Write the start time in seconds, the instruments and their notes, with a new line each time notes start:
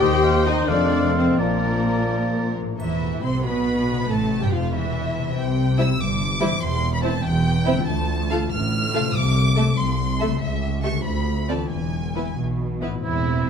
Already playing: viola section G4, french horn section G4, violin section G5
0.01 cello section D#2, double bass section D#2, harp D#3, bassoon D#3, clarinet C5, oboe D#5, flute section C6
0.24 oboe F5
0.46 harp C4, french horn section D#4, viola section D#4, violin section D#5, oboe G5
0.68 double bass section F1, cello section F2, harp F3, french horn section D4, viola section D4, clarinet A4, violin section D5, oboe F5, flute section C6
0.92 harp C4
1.15 french horn section C4, harp C4 F4, viola section C4, violin section C5
1.38 double bass section A#1, cello section A#2, harp A#2, bassoon F3, french horn section A#3, viola section A#3, violin section A#4, oboe D5, clarinet D5, flute section A#5
1.63 harp A#3
1.87 harp F4
2.10 harp A#3
2.34 harp C4
2.58 harp A#3
2.62 harp A2
2.66 harp C4
2.71 harp E4
2.75 harp A4
2.80 double bass section E1, cello section E2, viola section E3, violin section E4 E5, triangle
3.23 double bass section C2, cello section C3, viola section C4, violin section C5 C6
3.44 double bass section B1, cello section B2, viola section B3, violin section B4 B5
3.92 harp C3
3.96 harp C4
4.01 harp E4
4.05 double bass section A1, cello section A2, viola section A3, harp A4
4.09 violin section A4 A5
4.41 cello section G2, viola section G3, violin section G4 G5
4.52 double bass section F1, cello section F2, viola section F3, violin section F4 F5
4.73 double bass section E1, cello section E2, viola section E3, violin section E4 E5
5.18 harp C3
5.23 harp C4
5.28 harp E4
5.32 harp G4
5.36 double bass section C2, cello section C3, violin section G5
5.78 viola section G3 E4, violin section E4 C5 E6
5.99 double bass section G1, cello section G2, violin section D6
6.40 harp E3, viola section G3 E4, violin section E4 C5
6.47 harp C4
6.52 harp E4
6.57 harp G4
6.61 double bass section E1, cello section E2, violin section C6
6.94 violin section B5
7.03 viola section C4 E4, violin section E4 C5 A5
7.24 double bass section E1, cello section E2, violin section G5
7.66 harp D3, viola section C4 E4, violin section E4 C5
7.73 harp A3
7.78 harp F4
7.87 double bass section D2, cello section D2, violin section A5
8.30 viola section A3 F4, violin section A4 F5
8.52 double bass section A1, cello section A2, violin section F6
8.94 harp C3, viola section A3 F4, violin section A4 F5
9.01 harp A3
9.06 harp E4
9.10 harp A4
9.15 cello section C2, double bass section C2, violin section D6
9.57 viola section A3 A4, violin section A4 E5
9.78 cello section C2, double bass section C2, violin section C6
10.20 viola section A3 A4, violin section A4 E5
10.24 harp C#3
10.28 harp A3
10.32 harp G4
10.37 cello section C#2, harp A4
10.41 double bass section C#2, violin section E5
10.83 viola section A3 G4, violin section A4 E5 C#6
10.87 harp D3
10.92 harp C4
10.96 harp F4
11.01 harp A4
11.05 cello section D2, double bass section D2, violin section B5
11.49 viola section C4 F4, violin section A4 D5 A5
11.53 harp E3
11.58 harp B3
11.62 harp E4
11.71 double bass section E1, cello section E2, violin section G#5
12.15 viola section B3 E4, violin section E4 B4
12.37 double bass section B1, cello section B2
12.81 viola section B3 E4, violin section E4 B4
12.86 harp A2
12.91 harp C4
12.95 harp E4
13.04 double bass section E1, cello section E2, viola section C4, oboe E4, violin section E4